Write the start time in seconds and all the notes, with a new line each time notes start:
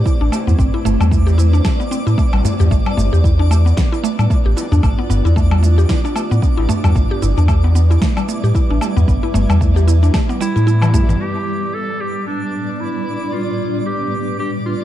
Already playing: A3 C4 E4 B4 C5 D5
0.06 E4, kick, shaker
0.21 A1 D4
0.32 A3, darbuka tek, low woodblock, shaker
0.47 E2 B3, darbuka dum, shaker
0.59 A1 C4, kick, shaker
0.74 E4
0.85 G1 A3, darbuka dum, shaker
1.00 E2 G3, darbuka ka, low woodblock, shaker
1.11 A3, kick, shaker
1.27 G4, darbuka tek, shaker
1.38 E4, shaker
1.53 D4, darbuka ka, shaker
1.64 A3, kick, snare, low woodblock, shaker
1.80 B3, darbuka ka, shaker
1.91 C4, shaker
2.07 A2 E4, shaker
2.18 A3, kick, shaker
2.33 A1 G3, darbuka tek, low woodblock
2.45 A3, darbuka dum, shaker
2.59 E2 G4, darbuka ka, darbuka tek, darbuka dum, shaker
2.71 A1 A3 B3 D4 F4 D5, kick, shaker
2.86 G3, low woodblock
2.97 G1 A3, darbuka dum, shaker
3.13 E2 G4, darbuka ka, shaker
3.24 E4, kick, shaker
3.39 D4, darbuka tek
3.51 A3, low woodblock, shaker
3.65 B3, darbuka ka, shaker
3.77 B3, kick, snare, shaker
3.92 E4, darbuka tek, shaker
4.04 A3, shaker
4.19 A2 G3, low woodblock, shaker
4.30 A3, kick, shaker
4.45 A1 G4
4.57 E4, darbuka tek, shaker
4.72 E2 D4, darbuka dum, shaker
4.83 A1 A3, kick, low woodblock, shaker
4.99 B3
5.10 G1 B3, darbuka dum, shaker
5.25 E2 E4, darbuka ka, shaker
5.36 A3, kick, shaker
5.51 G3, darbuka tek, low woodblock
5.63 A3, shaker
5.78 G4, darbuka ka, shaker
5.89 E4, kick, snare, shaker
6.04 D4, darbuka ka, shaker
6.16 A3, low woodblock, shaker
6.31 A2 B3, shaker
6.42 B3, kick, shaker
6.57 A1 E4, darbuka tek
6.69 A3, darbuka dum, shaker
6.84 E2 G3, darbuka ka, darbuka tek, darbuka dum, low woodblock, shaker
6.95 A1 G3 A3 E4 B4 E5, kick, shaker
7.11 G4
7.22 G1 E4, darbuka dum, shaker
7.37 E2 D4, darbuka ka, shaker
7.48 A3, kick, low woodblock, shaker
7.64 B3, darbuka tek
7.75 B3, shaker
7.90 E4, darbuka ka, shaker
8.02 A3, kick, snare, shaker
8.16 G3, darbuka tek, low woodblock, shaker
8.29 A3, shaker
8.44 A2 G4, shaker
8.55 E4, kick, shaker
8.70 A1 D4
8.81 A3, darbuka tek, low woodblock, shaker
8.97 E2 B3, darbuka dum, shaker
9.08 A1 B3, kick, shaker
9.23 E4
9.34 G1 A3, darbuka dum, shaker
9.49 E2 G3, darbuka ka, low woodblock, shaker
9.61 A3, kick, shaker
9.76 G4, darbuka tek, shaker
9.88 E4, shaker
10.03 D4, darbuka ka, shaker
10.14 A3, kick, snare, low woodblock, shaker
10.29 B3, darbuka ka, shaker
10.41 G3 E4, shaker
10.56 A2 E4, darbuka tek, shaker
10.67 E4, shaker
10.82 E3, darbuka ka, darbuka tek, low woodblock, shaker
10.94 A1 A3, darbuka dum, shaker
11.08 E3, darbuka ka, darbuka tek, darbuka dum, shaker
11.20 A2 G3 B3 D4 G4 B4 D5, closed hi-hat, shaker
11.48 shaker
11.63 shaker
11.74 A4, shaker
12.01 G4, shaker
12.15 closed hi-hat, shaker
12.27 D4, closed hi-hat, shaker
12.43 shaker
12.54 shaker
12.68 closed hi-hat
12.80 E4, closed hi-hat, shaker
12.95 closed hi-hat
13.22 closed hi-hat
13.33 F4, closed hi-hat
13.60 shaker
13.75 closed hi-hat, shaker
13.86 G4, closed hi-hat, shaker
14.13 shaker
14.28 closed hi-hat, shaker
14.39 G4, closed hi-hat, shaker
14.54 closed hi-hat, shaker
14.66 F4, shaker
14.80 closed hi-hat